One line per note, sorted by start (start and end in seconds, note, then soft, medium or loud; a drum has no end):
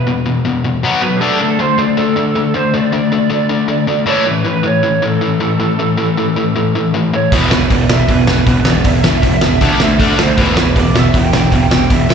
0.07 0.24 E2 medium
0.07 0.24 B2 medium
0.26 0.43 E2 medium
0.26 0.43 B2 medium
0.45 0.62 E2 medium
0.45 0.62 B2 medium
0.64 0.81 E2 medium
0.64 0.81 B2 medium
0.83 1.01 B2 medium
0.83 1.01 F#3 medium
0.83 1.02 B3 loud
1.02 1.19 B2 medium
1.02 1.19 F#3 medium
1.02 1.17 B4 medium
1.16 1.21 G4 medium
1.16 1.39 A4 medium
1.21 1.39 D3 medium
1.21 1.39 A3 medium
1.21 1.40 D4 medium
1.40 1.58 D3 medium
1.40 1.58 A3 medium
1.40 1.60 A4 medium
1.59 1.76 D3 medium
1.59 1.77 A3 medium
1.59 1.79 C5 medium
1.78 1.95 D3 medium
1.78 1.96 A3 medium
1.78 1.96 D5 medium
1.97 2.14 D3 medium
1.97 2.14 A3 medium
1.97 2.51 A4 medium
2.16 2.33 D3 medium
2.16 2.34 A3 medium
2.35 2.53 D3 medium
2.35 2.53 A3 medium
2.54 2.72 D3 medium
2.54 2.72 A3 medium
2.54 2.75 C5 medium
2.74 2.91 D3 medium
2.74 2.91 A3 medium
2.74 4.08 D5 medium
2.92 3.10 D3 medium
2.92 3.10 A3 medium
3.12 3.29 D3 medium
3.12 3.29 A3 medium
3.30 3.48 D3 medium
3.30 3.48 A3 medium
3.49 3.67 D3 medium
3.49 3.67 A3 medium
3.68 3.86 D3 medium
3.68 3.86 A3 medium
3.87 4.05 D3 medium
3.87 4.05 A3 medium
4.06 4.25 A2 medium
4.06 4.25 E3 medium
4.06 4.25 A3 medium
4.06 4.28 C#5 medium
4.26 4.43 A2 medium
4.26 4.43 E3 medium
4.26 4.46 B4 medium
4.45 4.62 A2 medium
4.45 4.62 E3 medium
4.45 4.64 B4 medium
4.63 4.81 A2 medium
4.63 4.82 E3 medium
4.63 5.05 C#5 medium
4.83 5.01 A2 medium
4.83 5.01 E3 medium
5.02 5.20 A2 medium
5.02 5.20 E3 medium
5.02 6.91 A4 medium
5.21 5.39 A2 medium
5.21 5.39 E3 medium
5.40 5.58 A2 medium
5.40 5.58 E3 medium
5.60 5.77 A2 medium
5.60 5.77 E3 medium
5.79 5.96 A2 medium
5.79 5.97 E3 medium
5.97 6.15 A2 medium
5.97 6.16 E3 medium
6.17 6.35 A2 medium
6.17 6.35 E3 medium
6.36 6.54 A2 medium
6.36 6.54 E3 medium
6.56 6.73 A2 medium
6.56 6.73 E3 medium
6.75 6.92 A2 medium
6.75 6.93 E3 medium
6.94 7.11 A2 medium
6.94 7.11 E3 medium
7.13 7.31 A2 medium
7.13 7.31 E3 medium
7.13 7.34 C#5 medium
7.32 7.45 E1 medium
7.32 7.50 E2 medium
7.32 7.51 B2 medium
7.32 7.49 E3 medium
7.32 7.51 E3 loud
7.32 7.50 B3 loud
7.32 7.51 E4 loud
7.32 7.53 B4 medium
7.32 kick loud
7.32 open hi-hat medium
7.51 7.64 E1 medium
7.51 7.69 E2 medium
7.51 7.69 B2 medium
7.51 7.68 E3 medium
7.51 7.69 B3 medium
7.51 7.72 B4 medium
7.51 snare loud
7.70 7.83 E1 medium
7.70 7.88 E2 medium
7.70 7.88 B2 medium
7.70 7.88 E3 medium
7.70 7.88 B3 medium
7.70 7.90 D5 medium
7.70 kick loud
7.70 open hi-hat medium
7.89 8.02 E1 medium
7.89 8.07 E2 medium
7.89 8.07 B2 medium
7.89 8.07 E3 medium
7.89 8.07 B3 medium
7.89 8.10 E5 medium
7.89 snare loud
8.08 8.21 E1 medium
8.08 8.26 E2 medium
8.08 8.26 B2 medium
8.08 8.26 E3 medium
8.08 8.26 B3 medium
8.08 8.69 B4 medium
8.08 kick loud
8.08 open hi-hat medium
8.27 8.40 E1 medium
8.27 8.45 E2 medium
8.27 8.45 B2 medium
8.27 8.45 E3 medium
8.27 8.45 B3 medium
8.27 snare loud
8.47 8.59 E1 medium
8.47 8.64 E2 medium
8.47 8.64 B2 medium
8.47 8.64 E3 medium
8.47 8.65 B3 medium
8.47 kick loud
8.47 open hi-hat soft
8.65 8.78 E1 medium
8.65 8.83 E2 medium
8.65 8.83 B2 medium
8.65 8.83 E3 medium
8.65 8.84 B3 medium
8.65 8.86 D5 medium
8.65 snare loud
8.84 8.98 E1 medium
8.84 9.02 E2 medium
8.84 9.02 B2 medium
8.84 9.03 E3 medium
8.84 9.03 B3 medium
8.84 10.22 E5 loud
8.84 kick loud
8.84 open hi-hat medium
9.03 9.17 E1 medium
9.03 9.21 E2 medium
9.03 9.21 B2 medium
9.03 9.22 E3 medium
9.03 9.22 B3 medium
9.03 snare loud
9.22 9.36 E1 medium
9.22 9.40 E2 medium
9.22 9.40 B2 medium
9.22 9.41 E3 medium
9.22 9.41 B3 medium
9.22 kick loud
9.22 open hi-hat medium
9.41 9.55 E1 medium
9.41 9.59 E2 medium
9.41 9.60 B2 medium
9.41 9.60 E3 medium
9.41 9.60 B3 medium
9.41 snare loud
9.61 9.74 D2 medium
9.61 9.79 D3 medium
9.61 9.80 A3 loud
9.61 9.80 D4 loud
9.61 kick loud
9.61 open hi-hat medium
9.80 9.93 D2 medium
9.80 9.98 D3 medium
9.80 9.97 D3 medium
9.80 9.98 A3 medium
9.80 snare loud
9.99 10.12 D2 medium
9.99 10.17 D3 medium
9.99 10.17 A3 medium
9.99 10.18 A3 loud
9.99 10.17 D4 loud
9.99 10.18 D4 loud
9.99 kick loud
9.99 open hi-hat medium
10.18 10.31 D2 medium
10.18 10.36 D3 medium
10.18 10.36 A3 medium
10.18 snare loud
10.22 10.40 C5 medium
10.37 10.51 E1 medium
10.37 10.56 E2 medium
10.37 10.56 B2 medium
10.37 10.55 E3 medium
10.37 10.56 E3 medium
10.37 10.56 B3 loud
10.37 10.56 E4 loud
10.37 10.59 B4 loud
10.37 kick loud
10.37 open hi-hat medium
10.56 10.69 E1 medium
10.56 10.74 E2 medium
10.56 10.74 B2 medium
10.56 10.74 E3 medium
10.56 10.74 B3 medium
10.56 10.78 B4 medium
10.56 snare loud
10.75 10.89 E1 medium
10.75 10.93 E2 medium
10.75 10.93 B2 medium
10.75 10.93 E3 medium
10.75 10.93 B3 medium
10.75 10.98 D5 medium
10.75 kick loud
10.75 open hi-hat medium
10.94 11.07 E1 medium
10.94 11.13 E2 medium
10.94 11.13 B2 medium
10.94 11.12 E3 medium
10.94 11.12 B3 medium
10.94 11.16 E5 medium
10.94 snare loud
11.13 11.27 E1 medium
11.13 11.32 E2 medium
11.13 11.32 B2 medium
11.13 11.31 E3 medium
11.13 11.31 B3 medium
11.13 11.69 G5 loud
11.13 kick loud
11.13 open hi-hat medium
11.33 11.46 E1 medium
11.33 11.50 E2 medium
11.33 11.51 B2 medium
11.33 11.50 E3 medium
11.33 11.50 B3 medium
11.33 snare loud
11.51 11.65 E1 medium
11.51 11.70 E2 medium
11.51 11.70 B2 medium
11.51 11.69 E3 medium
11.51 11.69 B3 medium
11.51 kick loud
11.51 open hi-hat medium
11.70 11.83 E1 medium
11.70 11.89 E2 medium
11.70 11.89 B2 medium
11.70 11.88 E3 medium
11.70 11.88 B3 medium
11.70 11.91 G5 medium
11.70 snare loud
11.90 12.03 E1 medium
11.90 12.08 E2 medium
11.90 12.08 B2 medium
11.90 12.07 E3 medium
11.90 12.08 B3 medium
11.90 12.14 E5 loud
11.90 kick loud
11.90 open hi-hat medium
12.09 12.14 E1 medium
12.09 12.14 E2 medium
12.09 12.14 B2 medium
12.09 12.14 E3 medium
12.09 12.14 B3 medium
12.09 snare loud